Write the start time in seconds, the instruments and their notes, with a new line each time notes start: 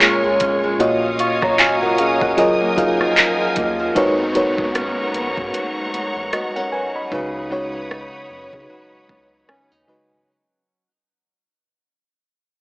Already playing: fm electric piano A#2 A#3 F4 G#4 C#5, nylon-string guitar A#2 G#3 C#4, string section A#4 G#5 C#6
0.01 nylon-string guitar F4, clap, closed hi-hat
0.24 analog synth bass C#2, nylon-string guitar G#3
0.40 analog synth bass F1, nylon-string guitar C#4, kick, closed hi-hat
0.64 nylon-string guitar G#3
0.79 analog synth bass A#1, fm electric piano A#2 A#3 F4 F#4 C#5 D#5, nylon-string guitar A#2, string section C#5 F5 D#6, closed hi-hat
1.03 nylon-string guitar C#4
1.19 nylon-string guitar F4, fm electric piano F5 C#6, closed hi-hat
1.42 nylon-string guitar F#3, fm electric piano C#5 A#5, kick, cross-stick
1.59 analog synth bass G#1, nylon-string guitar F4, fm electric piano G#5, clap, closed hi-hat
1.82 nylon-string guitar F#3, fm electric piano A#4 F#5
1.98 nylon-string guitar C#4, fm electric piano G#4 F5, closed hi-hat
2.21 analog synth bass F#1, nylon-string guitar F#3, fm electric piano A#4 F#5, kick
2.37 analog synth bass F#1, nylon-string guitar F#2, fm electric piano F#3 F4 G#4 A#4 D#5, string section A#4 G#5, closed hi-hat
2.61 nylon-string guitar A#3
2.77 fm electric piano F#3 F4 G#4 A#4 F5, nylon-string guitar D#4, kick, closed hi-hat
3.01 nylon-string guitar F3, cross-stick
3.17 nylon-string guitar D#4, clap, closed hi-hat
3.40 nylon-string guitar F3
3.56 analog synth bass D#2, nylon-string guitar A#3, kick, closed hi-hat
3.79 nylon-string guitar F3
3.95 analog synth bass G#1, nylon-string guitar G#2, fm electric piano G#3 D#4 F#4 A#4 B4 C#5, string section B3 F#5 A#5 C#6, kick, closed hi-hat, downlifter
4.35 nylon-string guitar F#3, fm electric piano G#3 D#4 F#4 A#4 B4 C#5, closed hi-hat
4.58 kick
4.75 nylon-string guitar C#4, cross-stick, closed hi-hat
5.14 analog synth bass A#1, nylon-string guitar B3, closed hi-hat
5.37 analog synth bass G#2, kick
5.54 nylon-string guitar F#3, closed hi-hat
5.94 analog synth bass A#1, nylon-string guitar B3, closed hi-hat
6.16 analog synth bass A#1
6.33 nylon-string guitar B3, fm electric piano F#4 D#5, cross-stick, closed hi-hat
6.56 nylon-string guitar C#4, fm electric piano A#4 F#5
6.72 nylon-string guitar F#3, fm electric piano B4 G#5
6.96 fm electric piano D#5 B5
7.11 analog synth bass C#2, fm electric piano C#3 G#3 D#4 F#4 B4, nylon-string guitar C#3, string section C#5 B5 D#6, kick
7.51 fm electric piano C#3 G#3 D#4 F#4 C#5, nylon-string guitar F#3
7.91 nylon-string guitar D#4, cross-stick
8.30 analog synth bass F#2, nylon-string guitar B3
8.53 analog synth bass C#3, kick
8.70 nylon-string guitar F#3
8.93 analog synth bass C#2
9.09 analog synth bass C#2, nylon-string guitar B3, kick
9.49 analog synth bass D#2, nylon-string guitar C#4, fm electric piano G#5, cross-stick
9.72 analog synth bass D#2, nylon-string guitar D#4
9.87 fm electric piano C#3 G#3 D#4 F#4 B4 D#5, nylon-string guitar F#3
10.11 analog synth bass G#1